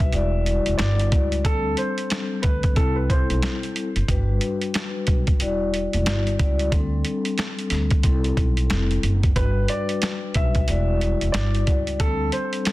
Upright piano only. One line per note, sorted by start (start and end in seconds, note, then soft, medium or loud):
0.00 0.75 E5 medium
0.78 1.08 D5 medium
1.46 1.75 A4 loud
1.78 2.40 C5 medium
2.42 2.73 B4 medium
2.76 2.95 A4 medium
2.96 3.08 B4 medium
3.10 4.05 C5 medium
9.36 9.66 B4 medium
9.69 10.31 D5 medium
10.36 11.30 E5 medium
11.32 11.63 D5 medium
12.00 12.30 A4 loud
12.32 12.72 C5 medium